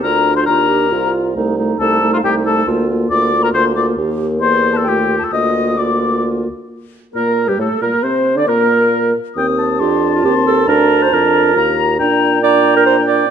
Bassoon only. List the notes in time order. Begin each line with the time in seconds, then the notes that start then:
0.04 D2
0.48 D#2
0.92 C2
1.36 C2
1.80 C2
2.24 C2
2.67 D2
3.11 D2
3.53 D2
3.98 D#2
4.41 E2
4.87 D#2
5.32 D2
7.15 A#2
7.49 G2
7.59 A2
7.81 A#2
8.03 C3
8.37 D3
8.48 A#2
9.36 D#2
9.81 F2
10.24 D#2
10.68 D2
11.12 F2
11.56 D#2
12.00 A#2